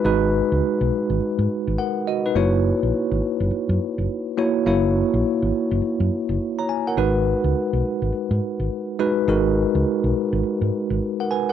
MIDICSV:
0, 0, Header, 1, 4, 480
1, 0, Start_track
1, 0, Tempo, 576923
1, 38, Time_signature, 4, 2, 24, 8
1, 9590, End_track
2, 0, Start_track
2, 0, Title_t, "Tine electric piano"
2, 0, Program_c, 0, 4
2, 0, Control_c, 0, 64, 127
2, 0, Note_on_c, 0, 56, 82
2, 0, Note_on_c, 0, 63, 78
2, 0, Note_on_c, 0, 66, 74
2, 0, Note_on_c, 0, 71, 94
2, 39, Note_off_c, 0, 56, 0
2, 39, Note_on_c, 0, 56, 86
2, 42, Note_off_c, 0, 63, 0
2, 42, Note_on_c, 0, 63, 84
2, 46, Note_off_c, 0, 66, 0
2, 46, Note_on_c, 0, 66, 77
2, 49, Note_off_c, 0, 71, 0
2, 49, Note_on_c, 0, 71, 91
2, 716, Note_off_c, 0, 56, 0
2, 718, Note_off_c, 0, 63, 0
2, 720, Note_off_c, 0, 66, 0
2, 722, Note_off_c, 0, 71, 0
2, 1485, Note_on_c, 0, 78, 72
2, 1491, Note_on_c, 0, 70, 52
2, 1710, Note_off_c, 0, 78, 0
2, 1713, Note_off_c, 0, 70, 0
2, 1726, Note_on_c, 0, 75, 74
2, 1731, Note_on_c, 0, 66, 63
2, 1869, Note_off_c, 0, 75, 0
2, 1872, Note_off_c, 0, 66, 0
2, 1879, Note_on_c, 0, 71, 69
2, 1883, Note_on_c, 0, 63, 58
2, 1959, Note_on_c, 0, 58, 83
2, 1962, Note_on_c, 0, 64, 74
2, 1966, Note_on_c, 0, 66, 71
2, 1969, Note_on_c, 0, 73, 96
2, 1971, Control_c, 0, 64, 0
2, 2095, Control_c, 0, 64, 127
2, 2104, Note_off_c, 0, 71, 0
2, 2106, Note_off_c, 0, 63, 0
2, 2636, Note_off_c, 0, 58, 0
2, 2638, Note_off_c, 0, 64, 0
2, 2640, Note_off_c, 0, 66, 0
2, 2641, Note_off_c, 0, 73, 0
2, 3640, Note_on_c, 0, 58, 88
2, 3643, Note_on_c, 0, 64, 80
2, 3646, Note_on_c, 0, 66, 79
2, 3649, Note_on_c, 0, 73, 97
2, 3826, Note_off_c, 0, 58, 0
2, 3828, Note_off_c, 0, 64, 0
2, 3829, Note_off_c, 0, 66, 0
2, 3830, Note_off_c, 0, 73, 0
2, 3879, Note_on_c, 0, 58, 88
2, 3883, Note_on_c, 0, 64, 73
2, 3885, Note_on_c, 0, 66, 77
2, 3889, Note_on_c, 0, 73, 89
2, 4557, Note_off_c, 0, 58, 0
2, 4558, Note_off_c, 0, 64, 0
2, 4560, Note_off_c, 0, 66, 0
2, 4561, Note_off_c, 0, 73, 0
2, 5480, Note_on_c, 0, 82, 69
2, 5484, Note_on_c, 0, 73, 59
2, 5558, Note_off_c, 0, 82, 0
2, 5560, Note_off_c, 0, 73, 0
2, 5567, Note_on_c, 0, 80, 69
2, 5709, Note_off_c, 0, 80, 0
2, 5719, Note_on_c, 0, 78, 68
2, 5724, Note_on_c, 0, 70, 58
2, 5800, Note_on_c, 0, 56, 78
2, 5804, Note_on_c, 0, 63, 76
2, 5807, Note_on_c, 0, 66, 72
2, 5809, Control_c, 0, 64, 0
2, 5809, Note_on_c, 0, 71, 98
2, 5941, Control_c, 0, 64, 127
2, 5944, Note_off_c, 0, 78, 0
2, 5947, Note_off_c, 0, 70, 0
2, 6477, Note_off_c, 0, 56, 0
2, 6479, Note_off_c, 0, 63, 0
2, 6480, Note_off_c, 0, 66, 0
2, 6482, Note_off_c, 0, 71, 0
2, 7480, Note_on_c, 0, 56, 87
2, 7483, Note_on_c, 0, 63, 82
2, 7486, Note_on_c, 0, 66, 82
2, 7490, Note_on_c, 0, 71, 96
2, 7666, Note_off_c, 0, 56, 0
2, 7667, Note_off_c, 0, 63, 0
2, 7669, Note_off_c, 0, 66, 0
2, 7671, Note_off_c, 0, 71, 0
2, 7720, Note_on_c, 0, 56, 88
2, 7723, Note_on_c, 0, 63, 82
2, 7727, Note_on_c, 0, 66, 79
2, 7730, Note_on_c, 0, 70, 92
2, 8397, Note_off_c, 0, 56, 0
2, 8398, Note_off_c, 0, 63, 0
2, 8400, Note_off_c, 0, 66, 0
2, 8402, Note_off_c, 0, 70, 0
2, 9320, Note_on_c, 0, 78, 62
2, 9326, Note_on_c, 0, 70, 54
2, 9398, Note_off_c, 0, 78, 0
2, 9401, Note_off_c, 0, 70, 0
2, 9408, Note_on_c, 0, 80, 72
2, 9413, Note_on_c, 0, 71, 59
2, 9550, Note_off_c, 0, 80, 0
2, 9553, Note_off_c, 0, 71, 0
2, 9563, Note_on_c, 0, 78, 70
2, 9590, Note_off_c, 0, 78, 0
2, 9590, End_track
3, 0, Start_track
3, 0, Title_t, "Fingered electric bass"
3, 0, Program_c, 1, 33
3, 38, Note_on_c, 1, 32, 102
3, 332, Note_off_c, 1, 32, 0
3, 433, Note_on_c, 1, 37, 89
3, 497, Note_off_c, 1, 37, 0
3, 673, Note_on_c, 1, 35, 92
3, 737, Note_off_c, 1, 35, 0
3, 913, Note_on_c, 1, 32, 99
3, 977, Note_off_c, 1, 32, 0
3, 1153, Note_on_c, 1, 44, 88
3, 1217, Note_off_c, 1, 44, 0
3, 1393, Note_on_c, 1, 32, 95
3, 1457, Note_off_c, 1, 32, 0
3, 1958, Note_on_c, 1, 30, 114
3, 2251, Note_off_c, 1, 30, 0
3, 2353, Note_on_c, 1, 34, 78
3, 2417, Note_off_c, 1, 34, 0
3, 2592, Note_on_c, 1, 32, 92
3, 2656, Note_off_c, 1, 32, 0
3, 2831, Note_on_c, 1, 30, 80
3, 2896, Note_off_c, 1, 30, 0
3, 3071, Note_on_c, 1, 42, 96
3, 3136, Note_off_c, 1, 42, 0
3, 3312, Note_on_c, 1, 30, 90
3, 3376, Note_off_c, 1, 30, 0
3, 3878, Note_on_c, 1, 30, 108
3, 4172, Note_off_c, 1, 30, 0
3, 4273, Note_on_c, 1, 34, 95
3, 4337, Note_off_c, 1, 34, 0
3, 4513, Note_on_c, 1, 32, 82
3, 4577, Note_off_c, 1, 32, 0
3, 4753, Note_on_c, 1, 30, 89
3, 4817, Note_off_c, 1, 30, 0
3, 4993, Note_on_c, 1, 42, 95
3, 5057, Note_off_c, 1, 42, 0
3, 5233, Note_on_c, 1, 30, 100
3, 5297, Note_off_c, 1, 30, 0
3, 5800, Note_on_c, 1, 32, 102
3, 6093, Note_off_c, 1, 32, 0
3, 6192, Note_on_c, 1, 37, 92
3, 6256, Note_off_c, 1, 37, 0
3, 6432, Note_on_c, 1, 35, 85
3, 6496, Note_off_c, 1, 35, 0
3, 6672, Note_on_c, 1, 32, 82
3, 6736, Note_off_c, 1, 32, 0
3, 6911, Note_on_c, 1, 44, 99
3, 6976, Note_off_c, 1, 44, 0
3, 7152, Note_on_c, 1, 32, 88
3, 7216, Note_off_c, 1, 32, 0
3, 7718, Note_on_c, 1, 32, 111
3, 8012, Note_off_c, 1, 32, 0
3, 8111, Note_on_c, 1, 37, 92
3, 8176, Note_off_c, 1, 37, 0
3, 8352, Note_on_c, 1, 35, 90
3, 8416, Note_off_c, 1, 35, 0
3, 8592, Note_on_c, 1, 32, 92
3, 8656, Note_off_c, 1, 32, 0
3, 8832, Note_on_c, 1, 44, 84
3, 8896, Note_off_c, 1, 44, 0
3, 9072, Note_on_c, 1, 32, 87
3, 9136, Note_off_c, 1, 32, 0
3, 9590, End_track
4, 0, Start_track
4, 0, Title_t, "Muted fingered electric bass strokes"
4, 1000, Note_on_c, 9, 29, 47
4, 1083, Note_off_c, 9, 29, 0
4, 2919, Note_on_c, 9, 29, 48
4, 3002, Note_off_c, 9, 29, 0
4, 4840, Note_on_c, 9, 29, 48
4, 4923, Note_off_c, 9, 29, 0
4, 6758, Note_on_c, 9, 29, 49
4, 6841, Note_off_c, 9, 29, 0
4, 8678, Note_on_c, 9, 29, 48
4, 8761, Note_off_c, 9, 29, 0
4, 9590, End_track
0, 0, End_of_file